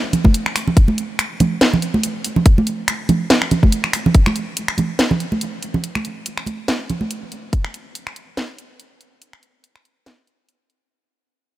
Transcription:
0.13 closed hi-hat medium
0.13 low conga medium
0.24 kick medium
0.24 high conga loud
0.34 closed hi-hat medium
0.46 finger snap medium
0.56 finger snap medium
0.56 open hi-hat medium
0.68 low conga medium
0.77 kick loud
0.77 closed hi-hat medium
0.88 high conga medium
0.98 closed hi-hat medium
1.19 finger snap medium
1.19 closed hi-hat medium
1.40 closed hi-hat medium
1.40 high conga medium
1.40 low conga medium
1.61 snare loud
1.61 closed hi-hat medium
1.74 low conga medium
1.82 closed hi-hat medium
1.94 high conga medium
2.03 closed hi-hat medium
2.24 open hi-hat loud
2.36 low conga medium
2.46 kick loud
2.46 closed hi-hat medium
2.58 high conga medium
2.67 closed hi-hat medium
2.88 finger snap medium
2.88 closed hi-hat medium
3.09 closed hi-hat medium
3.09 high conga medium
3.09 low conga medium
3.30 snare loud
3.30 closed hi-hat medium
3.42 finger snap medium
3.51 closed hi-hat medium
3.51 low conga medium
3.63 kick medium
3.63 high conga medium
3.72 closed hi-hat medium
3.84 finger snap medium
3.93 finger snap medium
3.93 open hi-hat loud
4.06 low conga medium
4.15 kick loud
4.15 closed hi-hat medium
4.26 finger snap medium
4.26 high conga medium
4.36 closed hi-hat medium
4.57 closed hi-hat medium
4.68 finger snap medium
4.78 closed hi-hat medium
4.78 high conga medium
4.78 low conga medium
4.99 snare loud
4.99 closed hi-hat medium
5.11 low conga loud
5.20 closed hi-hat medium
5.32 high conga medium
5.41 closed hi-hat medium
5.62 closed hi-hat medium
5.74 low conga medium
5.84 closed hi-hat medium
5.95 finger snap medium
5.95 high conga medium
6.05 closed hi-hat medium
6.26 closed hi-hat medium
6.38 finger snap medium
6.46 closed hi-hat medium
6.46 high conga medium
6.68 snare loud
6.68 closed hi-hat medium
6.90 closed hi-hat medium
6.90 low conga medium
7.01 high conga medium
7.11 closed hi-hat medium
7.32 closed hi-hat medium
7.53 kick loud
7.53 closed hi-hat medium
7.65 finger snap medium
7.74 closed hi-hat medium
7.95 closed hi-hat medium
8.07 finger snap medium
8.16 closed hi-hat medium
8.37 snare loud
8.37 closed hi-hat medium
8.58 closed hi-hat medium
8.80 closed hi-hat medium
9.01 closed hi-hat medium
9.22 closed hi-hat medium
9.33 finger snap medium
9.43 closed hi-hat medium
9.64 closed hi-hat medium
9.76 finger snap medium
9.85 closed hi-hat medium
10.06 snare loud
10.06 closed hi-hat medium
10.27 closed hi-hat soft
10.49 closed hi-hat medium
10.70 closed hi-hat medium

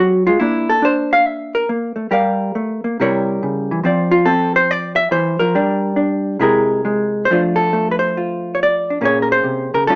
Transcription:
0.00 0.28 F#3 medium
0.00 0.27 C4 soft
0.00 0.26 F#4 medium
0.27 0.41 G#3 medium
0.27 0.41 F4 medium
0.40 1.68 A#3 medium
0.40 0.81 D4 soft
0.40 0.70 E4 medium
0.70 0.84 A4 medium
0.82 1.69 D4 medium
0.82 1.14 C5 medium
1.13 1.27 F5 loud
1.27 1.56 E5 medium
1.55 1.69 A#4 medium
1.69 1.95 A#3 medium
1.96 2.10 A3 medium
2.11 2.55 G3 medium
2.11 2.96 G4 medium
2.11 2.97 A#4 medium
2.11 2.97 F5 medium
2.55 2.84 A3 medium
2.84 2.98 A#3 medium
3.00 3.42 C3 medium
3.00 3.84 G3 medium
3.00 3.84 E4 medium
3.00 3.84 A#4 medium
3.00 3.84 C#5 medium
3.43 3.71 C#3 medium
3.71 3.83 E3 medium
3.83 5.11 F3 medium
3.83 4.24 C4 soft
3.83 4.10 F4 medium
3.83 4.25 D5 soft
4.11 4.26 F4 medium
4.25 5.53 C4 medium
4.25 4.55 A4 medium
4.56 4.71 C5 loud
4.71 4.95 D5 medium
4.96 5.11 E5 loud
5.11 5.40 E3 medium
5.11 5.41 C5 medium
5.39 5.55 F3 medium
5.39 5.97 A#4 medium
5.55 6.40 G3 medium
5.55 5.95 D4 medium
5.96 6.39 D4 medium
6.39 7.27 C3 medium
6.39 6.84 G#3 medium
6.39 7.27 E4 medium
6.39 7.28 G#4 medium
6.39 7.25 A#4 medium
6.85 7.27 G#3 medium
7.25 7.41 C5 medium
7.30 9.01 F3 medium
7.30 7.72 A3 soft
7.30 8.89 D4 soft
7.30 8.17 F4 soft
7.56 7.91 A4 medium
7.73 9.01 A3 medium
7.91 7.99 B4 medium
7.99 8.53 C5 medium
8.17 9.01 F4 soft
8.55 8.59 C#5 medium
8.63 9.04 D5 medium
8.90 9.02 D4 soft
9.01 9.43 A#2 medium
9.01 9.89 A#3 soft
9.01 9.86 C#4 soft
9.01 9.87 G#4 soft
9.05 9.22 C#5 medium
9.22 9.31 A#4 medium
9.32 9.74 C5 medium
9.44 9.73 C3 medium
9.74 9.88 C#3 medium
9.74 9.87 A#4 medium
9.87 9.95 D#3 medium
9.87 9.95 G3 soft
9.87 9.95 C#4 soft
9.87 9.95 F4 soft
9.87 9.95 A4 medium

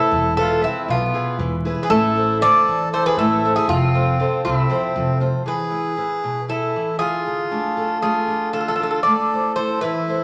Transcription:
0.00 0.10 A3 medium
0.00 0.34 E4 medium
0.00 0.36 A4 loud
0.11 0.65 E1 loud
0.11 0.61 E3 medium
0.37 0.61 E4 soft
0.37 0.62 F4 medium
0.37 0.61 G#4 soft
0.37 0.61 A4 medium
0.37 0.61 B4 medium
0.61 0.87 C4 medium
0.61 1.03 E4 soft
0.61 0.87 E4 medium
0.61 1.03 G#4 soft
0.61 1.03 B4 medium
0.88 1.06 B1 loud
0.88 1.37 B2 medium
0.88 1.37 B3 medium
0.88 1.37 F4 medium
1.14 1.54 E4 medium
1.14 1.54 G#4 soft
1.14 1.55 B4 medium
1.38 1.74 E1 loud
1.38 1.89 E3 medium
1.65 1.85 E4 medium
1.65 1.85 G#4 soft
1.65 1.86 B4 soft
1.83 1.89 G#4 medium
1.83 1.90 B4 medium
1.90 2.43 A1 loud
1.90 2.39 A3 medium
1.90 2.38 E4 medium
1.90 2.42 A4 medium
2.15 2.40 E4 medium
2.15 2.41 A4 soft
2.15 2.40 C5 medium
2.41 2.82 E4 soft
2.41 2.89 A4 medium
2.41 2.82 A4 soft
2.41 2.82 C5 medium
2.41 2.89 D5 loud
2.65 2.83 E2 medium
2.65 3.17 E3 medium
2.92 3.33 E4 medium
2.92 3.04 A4 medium
2.92 3.34 A4 soft
2.92 3.05 C5 medium
2.92 3.34 C5 soft
3.06 3.17 G#4 medium
3.06 3.17 B4 medium
3.17 3.53 A1 loud
3.17 3.68 A3 medium
3.17 3.53 E4 medium
3.17 3.55 A4 medium
3.45 3.65 E4 medium
3.45 3.64 A4 soft
3.45 3.65 C5 medium
3.55 3.67 E4 medium
3.55 3.69 G#4 medium
3.68 4.22 F1 loud
3.68 4.18 F3 medium
3.68 4.41 C4 medium
3.68 4.41 F4 medium
3.94 4.18 F4 soft
3.94 4.19 A4 soft
3.94 4.19 C5 medium
4.19 4.60 F4 medium
4.19 4.60 A4 soft
4.19 4.61 C5 medium
4.45 4.63 C2 medium
4.45 4.95 C3 medium
4.45 5.18 C4 medium
4.45 5.17 E4 medium
4.69 4.94 F3 medium
4.69 5.11 A4 soft
4.69 5.11 C5 medium
4.96 5.32 F1 medium
4.96 5.45 F3 medium
5.20 5.41 F4 soft
5.20 5.42 A4 soft
5.20 5.41 C5 soft
5.46 5.96 E3 medium
5.46 6.45 G#4 medium
5.46 6.49 B4 medium
5.71 5.96 E4 soft
5.71 5.96 G#4 soft
5.71 5.97 B4 soft
5.97 6.38 E4 soft
5.97 6.38 G#4 soft
5.97 6.39 B4 soft
6.24 6.73 B2 medium
6.48 6.90 E4 soft
6.48 6.97 E4 medium
6.48 6.97 A4 medium
6.48 6.91 B4 soft
6.76 7.25 E3 medium
6.99 7.21 E4 soft
6.99 7.98 F4 medium
6.99 7.98 G#4 medium
6.99 7.21 G#4 soft
6.99 7.22 B4 soft
7.26 7.51 D3 medium
7.51 7.93 A3 soft
7.51 7.76 D4 soft
7.51 7.76 F4 soft
7.77 8.18 D4 soft
7.77 8.18 F4 soft
7.77 8.19 A4 soft
8.01 8.53 A3 medium
8.01 8.49 F4 medium
8.01 8.50 G#4 medium
8.27 8.69 D4 soft
8.27 8.69 F4 soft
8.27 8.69 A4 soft
8.53 9.03 D3 medium
8.53 9.01 F4 medium
8.53 8.59 A4 medium
8.61 8.67 A4 medium
8.68 8.74 A4 medium
8.76 9.00 F4 soft
8.76 8.82 A4 medium
8.80 9.00 D4 soft
8.80 9.00 A4 soft
8.80 8.90 A4 medium
8.91 8.99 A4 medium
9.03 9.56 A3 medium
9.03 9.52 A4 medium
9.03 9.52 D5 medium
9.32 9.56 E4 soft
9.32 9.57 A4 soft
9.32 9.57 C5 soft
9.56 9.98 E4 soft
9.56 9.80 A4 medium
9.56 9.98 A4 soft
9.56 9.80 C5 medium
9.56 9.98 C5 soft
9.80 10.24 E3 medium
9.80 10.24 E4 medium
9.80 10.24 B4 medium
10.08 10.24 E4 soft
10.08 10.24 A4 soft
10.08 10.24 C5 medium

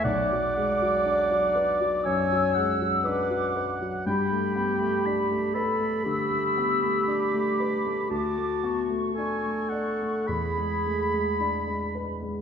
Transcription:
0.04 2.01 B1 soft
0.04 2.08 D5 medium
0.04 0.54 F#5 soft
0.04 2.06 D6 medium
0.32 0.72 F#3 soft
0.55 0.81 G#3 soft
0.55 1.76 F#5 soft
0.82 1.22 F#3 soft
1.06 1.46 D4 soft
1.31 1.71 F#3 soft
1.55 1.95 B4 soft
1.81 2.21 F#3 soft
2.05 2.46 F#2 soft
2.05 2.79 C#5 medium
2.05 2.56 G#5 medium
2.05 3.05 E6 medium
2.32 2.71 F#3 soft
2.55 2.81 G#3 soft
2.55 4.06 F#5 medium
2.81 3.21 F#3 soft
3.04 3.46 D4 soft
3.04 3.52 B4 medium
3.04 3.76 D6 medium
3.30 3.71 F#3 soft
3.56 3.96 B4 soft
3.81 4.06 F#3 soft
4.06 6.03 G2 soft
4.06 5.56 G4 medium
4.06 5.07 G5 soft
4.06 6.03 B5 soft
4.32 4.72 A3 soft
4.56 4.81 B3 soft
4.80 5.21 A3 soft
5.06 5.46 D4 soft
5.06 5.55 B5 soft
5.31 5.71 A3 soft
5.54 6.06 A4 medium
5.54 5.96 B4 soft
5.54 8.07 B5 medium
5.80 6.21 A3 soft
6.05 6.47 D3 soft
6.05 8.11 G4 medium
6.05 7.09 E6 soft
6.31 6.73 A3 soft
6.58 6.83 B3 soft
6.84 7.25 A3 soft
7.08 7.49 D4 soft
7.08 8.11 D6 soft
7.34 7.75 A3 soft
7.60 8.01 B4 soft
7.85 8.11 A3 soft
8.09 10.23 D2 soft
8.09 9.14 F#4 medium
8.09 8.86 A5 soft
8.09 8.63 D6 soft
8.37 8.80 A3 soft
8.63 8.90 B3 soft
8.63 10.28 C#6 soft
8.90 9.33 A3 soft
9.15 9.61 D4 soft
9.15 10.29 A4 medium
9.15 9.70 G#5 soft
9.45 9.89 A3 soft
9.69 10.17 D5 soft
9.69 10.29 F#5 soft
10.02 10.29 A3 soft
10.27 12.41 E2 soft
10.27 11.95 G#4 medium
10.27 12.15 B5 soft
10.57 11.02 G#3 soft
10.86 11.13 A3 soft
11.14 11.57 G#3 soft
11.41 11.84 D4 soft
11.68 12.11 G#3 soft
11.95 12.38 B4 soft
12.22 12.41 G#3 soft

